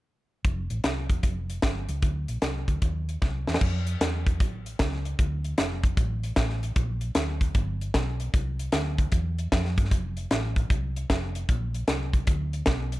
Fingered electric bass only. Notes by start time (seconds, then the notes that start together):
0.45 F1
0.70 A1
0.84 C2
1.09 E1
1.23 F1
1.63 G1
1.89 C#2
2.03 D2
2.29 A#1
2.42 C2
2.68 D2
2.82 D#2
3.22 C2
3.48 E2
3.61 F2
4.01 E2
4.40 A1
4.80 C#2
5.19 D2
5.59 F1
5.97 A1
6.37 A1
6.76 A#1
7.15 D2
7.55 G1
7.94 B1
8.34 C2
8.73 D2
9.12 E2
9.52 F2
9.77 G2
9.91 F1
10.31 A1
10.70 C2
11.10 F1
11.49 A#1
11.88 C2
12.27 D2
12.68 B1